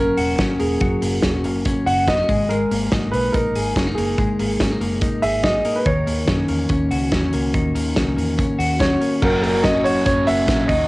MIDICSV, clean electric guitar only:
0, 0, Header, 1, 2, 480
1, 0, Start_track
1, 0, Tempo, 420168
1, 931, Time_signature, 4, 2, 24, 8
1, 12427, End_track
2, 0, Start_track
2, 0, Title_t, "Clean electric guitar"
2, 0, Program_c, 0, 27
2, 0, Note_on_c, 0, 54, 82
2, 0, Note_on_c, 0, 58, 55
2, 0, Note_on_c, 0, 61, 56
2, 200, Note_on_c, 0, 66, 55
2, 433, Note_off_c, 0, 61, 0
2, 447, Note_on_c, 0, 61, 57
2, 680, Note_off_c, 0, 58, 0
2, 685, Note_on_c, 0, 58, 59
2, 910, Note_off_c, 0, 54, 0
2, 924, Note_on_c, 0, 54, 79
2, 1162, Note_off_c, 0, 58, 0
2, 1167, Note_on_c, 0, 58, 59
2, 1394, Note_off_c, 0, 61, 0
2, 1408, Note_on_c, 0, 61, 56
2, 1650, Note_off_c, 0, 58, 0
2, 1654, Note_on_c, 0, 58, 51
2, 1879, Note_off_c, 0, 61, 0
2, 1893, Note_on_c, 0, 61, 53
2, 2115, Note_off_c, 0, 66, 0
2, 2128, Note_on_c, 0, 66, 56
2, 2372, Note_off_c, 0, 61, 0
2, 2376, Note_on_c, 0, 59, 52
2, 2496, Note_off_c, 0, 59, 0
2, 2496, Note_on_c, 0, 61, 52
2, 2609, Note_off_c, 0, 54, 0
2, 2616, Note_on_c, 0, 56, 73
2, 2659, Note_off_c, 0, 66, 0
2, 2663, Note_off_c, 0, 61, 0
2, 2846, Note_off_c, 0, 56, 0
2, 2860, Note_on_c, 0, 56, 84
2, 2894, Note_off_c, 0, 58, 0
2, 3100, Note_on_c, 0, 58, 58
2, 3342, Note_on_c, 0, 63, 56
2, 3574, Note_off_c, 0, 58, 0
2, 3579, Note_on_c, 0, 58, 53
2, 3820, Note_off_c, 0, 63, 0
2, 3825, Note_on_c, 0, 63, 56
2, 4064, Note_on_c, 0, 68, 58
2, 4301, Note_off_c, 0, 63, 0
2, 4305, Note_on_c, 0, 61, 58
2, 4419, Note_off_c, 0, 61, 0
2, 4419, Note_on_c, 0, 63, 47
2, 4541, Note_off_c, 0, 58, 0
2, 4546, Note_on_c, 0, 58, 56
2, 4770, Note_off_c, 0, 56, 0
2, 4784, Note_on_c, 0, 56, 80
2, 5017, Note_off_c, 0, 58, 0
2, 5021, Note_on_c, 0, 58, 58
2, 5257, Note_off_c, 0, 63, 0
2, 5262, Note_on_c, 0, 61, 64
2, 5385, Note_off_c, 0, 61, 0
2, 5385, Note_on_c, 0, 63, 48
2, 5488, Note_off_c, 0, 58, 0
2, 5492, Note_on_c, 0, 58, 53
2, 5719, Note_off_c, 0, 63, 0
2, 5732, Note_on_c, 0, 63, 55
2, 5962, Note_off_c, 0, 68, 0
2, 5976, Note_on_c, 0, 68, 59
2, 6207, Note_off_c, 0, 63, 0
2, 6212, Note_on_c, 0, 63, 57
2, 6452, Note_off_c, 0, 58, 0
2, 6457, Note_on_c, 0, 58, 60
2, 6691, Note_off_c, 0, 56, 0
2, 6695, Note_on_c, 0, 51, 76
2, 6744, Note_off_c, 0, 68, 0
2, 6927, Note_off_c, 0, 58, 0
2, 6931, Note_on_c, 0, 58, 57
2, 7164, Note_off_c, 0, 63, 0
2, 7168, Note_on_c, 0, 61, 63
2, 7405, Note_off_c, 0, 58, 0
2, 7409, Note_on_c, 0, 58, 53
2, 7645, Note_off_c, 0, 61, 0
2, 7650, Note_on_c, 0, 61, 61
2, 7890, Note_on_c, 0, 66, 60
2, 8134, Note_off_c, 0, 61, 0
2, 8139, Note_on_c, 0, 61, 56
2, 8375, Note_off_c, 0, 58, 0
2, 8380, Note_on_c, 0, 58, 59
2, 8601, Note_off_c, 0, 51, 0
2, 8614, Note_on_c, 0, 51, 79
2, 8850, Note_off_c, 0, 58, 0
2, 8855, Note_on_c, 0, 58, 57
2, 9097, Note_off_c, 0, 61, 0
2, 9101, Note_on_c, 0, 61, 54
2, 9327, Note_off_c, 0, 58, 0
2, 9331, Note_on_c, 0, 58, 54
2, 9565, Note_off_c, 0, 61, 0
2, 9570, Note_on_c, 0, 61, 50
2, 9806, Note_off_c, 0, 66, 0
2, 9810, Note_on_c, 0, 66, 57
2, 10035, Note_off_c, 0, 61, 0
2, 10049, Note_on_c, 0, 61, 63
2, 10287, Note_off_c, 0, 58, 0
2, 10291, Note_on_c, 0, 58, 52
2, 10533, Note_off_c, 0, 51, 0
2, 10541, Note_on_c, 0, 54, 85
2, 10579, Note_off_c, 0, 61, 0
2, 10777, Note_off_c, 0, 58, 0
2, 10781, Note_on_c, 0, 58, 56
2, 11022, Note_on_c, 0, 61, 59
2, 11255, Note_off_c, 0, 66, 0
2, 11259, Note_on_c, 0, 66, 64
2, 11484, Note_off_c, 0, 61, 0
2, 11498, Note_on_c, 0, 61, 59
2, 11733, Note_off_c, 0, 58, 0
2, 11738, Note_on_c, 0, 58, 57
2, 11957, Note_off_c, 0, 61, 0
2, 11971, Note_on_c, 0, 61, 56
2, 12196, Note_off_c, 0, 54, 0
2, 12201, Note_on_c, 0, 51, 77
2, 12258, Note_off_c, 0, 61, 0
2, 12262, Note_off_c, 0, 58, 0
2, 12262, Note_off_c, 0, 66, 0
2, 12427, Note_off_c, 0, 51, 0
2, 12427, End_track
0, 0, End_of_file